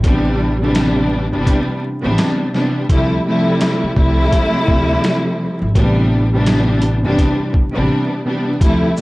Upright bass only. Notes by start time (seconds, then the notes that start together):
0.04 A1
1.33 G1
2.04 A1
2.90 D2
3.83 muted upright bass stroke
3.97 C2
4.68 D2
5.62 G#1
5.75 A1
7.04 G1
7.76 A1
8.61 D2